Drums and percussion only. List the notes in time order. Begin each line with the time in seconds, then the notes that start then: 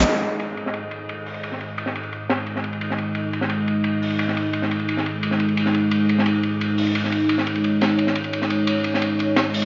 0.05 ride
0.14 snare
0.23 ride
0.40 closed hi-hat, ride
0.57 closed hi-hat, ride
0.66 snare
0.74 closed hi-hat, ride
0.91 closed hi-hat, ride
1.09 closed hi-hat, ride
1.26 closed hi-hat, open hi-hat
1.34 ride
1.43 closed hi-hat, ride
1.52 snare
1.61 closed hi-hat, ride
1.78 closed hi-hat, ride
1.86 snare
1.95 closed hi-hat, ride
2.03 ride
2.12 closed hi-hat, ride
2.30 snare, closed hi-hat, ride
2.46 closed hi-hat, ride
2.56 snare
2.64 closed hi-hat, ride
2.73 ride
2.81 closed hi-hat, ride
2.90 snare
2.98 closed hi-hat, ride
3.15 closed hi-hat, ride
3.33 closed hi-hat, ride
3.41 snare
3.49 closed hi-hat, ride
3.68 closed hi-hat, ride
3.84 closed hi-hat, ride
4.02 closed hi-hat, open hi-hat
4.10 ride
4.19 closed hi-hat, ride
4.28 snare
4.37 closed hi-hat, ride
4.53 closed hi-hat, ride
4.62 snare
4.71 closed hi-hat, ride
4.79 ride
4.88 closed hi-hat, ride
4.97 snare
5.05 closed hi-hat, ride
5.23 closed hi-hat, ride
5.31 snare
5.40 closed hi-hat, ride
5.49 ride
5.57 closed hi-hat, ride
5.66 snare
5.74 closed hi-hat, ride
5.91 closed hi-hat, ride
6.09 closed hi-hat, ride
6.19 snare
6.26 closed hi-hat, ride
6.43 closed hi-hat, ride
6.61 closed hi-hat, ride
6.78 closed hi-hat, open hi-hat
6.87 ride
6.95 closed hi-hat, ride
7.04 snare
7.12 closed hi-hat, ride
7.29 closed hi-hat, ride
7.38 snare
7.47 closed hi-hat, ride
7.55 ride
7.64 closed hi-hat, ride
7.81 snare, closed hi-hat, ride
7.98 closed hi-hat, ride
8.07 snare
8.15 closed hi-hat, ride
8.24 ride
8.33 closed hi-hat, ride
8.42 snare
8.50 closed hi-hat, ride
8.67 closed hi-hat, ride
8.84 closed hi-hat, ride
8.94 snare
9.02 closed hi-hat, ride
9.19 closed hi-hat, ride
9.36 snare, closed hi-hat, ride
9.54 closed hi-hat, open hi-hat
9.62 ride